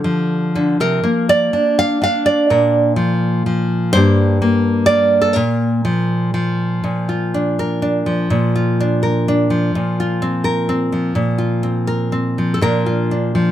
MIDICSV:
0, 0, Header, 1, 2, 480
1, 0, Start_track
1, 0, Key_signature, -2, "major"
1, 0, Tempo, 489396
1, 1005, Time_signature, 3, 2, 24, 8
1, 2442, Tempo, 478851
1, 5802, Tempo, 497100
1, 7242, Tempo, 475813
1, 11082, Tempo, 488998
1, 13415, End_track
2, 0, Start_track
2, 0, Title_t, "Nylon-string guitar"
2, 0, Program_c, 0, 24
2, 0, Note_on_c, 0, 50, 62
2, 0, Note_on_c, 0, 65, 42
2, 0, Note_on_c, 0, 69, 89
2, 42, Note_on_c, 0, 53, 63
2, 532, Note_off_c, 0, 50, 0
2, 544, Note_on_c, 0, 50, 64
2, 773, Note_off_c, 0, 69, 0
2, 776, Note_off_c, 0, 50, 0
2, 786, Note_on_c, 0, 48, 57
2, 792, Note_on_c, 0, 70, 84
2, 1011, Note_off_c, 0, 48, 0
2, 1015, Note_on_c, 0, 58, 66
2, 1258, Note_off_c, 0, 70, 0
2, 1268, Note_on_c, 0, 74, 104
2, 1498, Note_off_c, 0, 53, 0
2, 1502, Note_on_c, 0, 62, 65
2, 1753, Note_on_c, 0, 77, 107
2, 1973, Note_off_c, 0, 62, 0
2, 1977, Note_on_c, 0, 62, 61
2, 1980, Note_off_c, 0, 77, 0
2, 1996, Note_on_c, 0, 77, 93
2, 2202, Note_off_c, 0, 74, 0
2, 2214, Note_on_c, 0, 74, 89
2, 2454, Note_off_c, 0, 77, 0
2, 2455, Note_on_c, 0, 46, 73
2, 2458, Note_on_c, 0, 70, 46
2, 2912, Note_off_c, 0, 62, 0
2, 2916, Note_on_c, 0, 53, 68
2, 3012, Note_off_c, 0, 65, 0
2, 3399, Note_off_c, 0, 53, 0
2, 3415, Note_on_c, 0, 53, 65
2, 3859, Note_off_c, 0, 46, 0
2, 3879, Note_off_c, 0, 70, 0
2, 3883, Note_on_c, 0, 72, 111
2, 3886, Note_off_c, 0, 74, 0
2, 3888, Note_off_c, 0, 53, 0
2, 3903, Note_on_c, 0, 43, 72
2, 3909, Note_off_c, 0, 58, 0
2, 3909, Note_on_c, 0, 58, 49
2, 3922, Note_on_c, 0, 62, 47
2, 3928, Note_on_c, 0, 67, 44
2, 4369, Note_off_c, 0, 58, 0
2, 4373, Note_on_c, 0, 58, 70
2, 4814, Note_off_c, 0, 72, 0
2, 4818, Note_on_c, 0, 74, 106
2, 4839, Note_off_c, 0, 58, 0
2, 4843, Note_on_c, 0, 58, 65
2, 5170, Note_off_c, 0, 67, 0
2, 5174, Note_on_c, 0, 69, 81
2, 5289, Note_off_c, 0, 74, 0
2, 5289, Note_on_c, 0, 70, 86
2, 5306, Note_off_c, 0, 69, 0
2, 5309, Note_off_c, 0, 62, 0
2, 5314, Note_off_c, 0, 43, 0
2, 5318, Note_on_c, 0, 46, 82
2, 5803, Note_off_c, 0, 58, 0
2, 5807, Note_on_c, 0, 53, 70
2, 6270, Note_off_c, 0, 53, 0
2, 6282, Note_on_c, 0, 53, 62
2, 6738, Note_off_c, 0, 46, 0
2, 6753, Note_off_c, 0, 70, 0
2, 6762, Note_on_c, 0, 46, 59
2, 7005, Note_on_c, 0, 65, 47
2, 7252, Note_on_c, 0, 62, 54
2, 7503, Note_on_c, 0, 70, 56
2, 7723, Note_off_c, 0, 62, 0
2, 7735, Note_on_c, 0, 62, 54
2, 7965, Note_off_c, 0, 53, 0
2, 7977, Note_on_c, 0, 53, 57
2, 8183, Note_off_c, 0, 46, 0
2, 8187, Note_off_c, 0, 62, 0
2, 8193, Note_off_c, 0, 70, 0
2, 8220, Note_on_c, 0, 46, 69
2, 8471, Note_off_c, 0, 65, 0
2, 8475, Note_on_c, 0, 65, 53
2, 8727, Note_on_c, 0, 62, 56
2, 8951, Note_on_c, 0, 70, 57
2, 9193, Note_off_c, 0, 62, 0
2, 9208, Note_on_c, 0, 62, 58
2, 9427, Note_off_c, 0, 53, 0
2, 9431, Note_on_c, 0, 53, 55
2, 9631, Note_off_c, 0, 46, 0
2, 9634, Note_off_c, 0, 70, 0
2, 9643, Note_off_c, 0, 62, 0
2, 9683, Note_on_c, 0, 46, 66
2, 9927, Note_off_c, 0, 65, 0
2, 9931, Note_on_c, 0, 65, 53
2, 10154, Note_on_c, 0, 60, 60
2, 10379, Note_on_c, 0, 70, 62
2, 10617, Note_off_c, 0, 60, 0
2, 10627, Note_on_c, 0, 60, 56
2, 10860, Note_off_c, 0, 53, 0
2, 10864, Note_on_c, 0, 53, 56
2, 11059, Note_off_c, 0, 70, 0
2, 11065, Note_off_c, 0, 60, 0
2, 11068, Note_off_c, 0, 46, 0
2, 11093, Note_on_c, 0, 46, 61
2, 11318, Note_off_c, 0, 65, 0
2, 11322, Note_on_c, 0, 65, 47
2, 11564, Note_on_c, 0, 60, 54
2, 11803, Note_on_c, 0, 70, 59
2, 12034, Note_off_c, 0, 60, 0
2, 12046, Note_on_c, 0, 60, 52
2, 12289, Note_off_c, 0, 53, 0
2, 12301, Note_on_c, 0, 53, 49
2, 12453, Note_off_c, 0, 65, 0
2, 12457, Note_on_c, 0, 69, 56
2, 12502, Note_off_c, 0, 60, 0
2, 12502, Note_off_c, 0, 70, 0
2, 12505, Note_off_c, 0, 46, 0
2, 12527, Note_off_c, 0, 53, 0
2, 12527, Note_off_c, 0, 69, 0
2, 12529, Note_on_c, 0, 46, 59
2, 12538, Note_on_c, 0, 53, 40
2, 12539, Note_on_c, 0, 70, 75
2, 12545, Note_on_c, 0, 62, 44
2, 12557, Note_on_c, 0, 65, 42
2, 12770, Note_off_c, 0, 65, 0
2, 12774, Note_on_c, 0, 65, 43
2, 13015, Note_off_c, 0, 62, 0
2, 13019, Note_on_c, 0, 62, 46
2, 13247, Note_off_c, 0, 53, 0
2, 13250, Note_on_c, 0, 53, 61
2, 13415, Note_off_c, 0, 46, 0
2, 13415, Note_off_c, 0, 53, 0
2, 13415, Note_off_c, 0, 62, 0
2, 13415, Note_off_c, 0, 65, 0
2, 13415, Note_off_c, 0, 70, 0
2, 13415, End_track
0, 0, End_of_file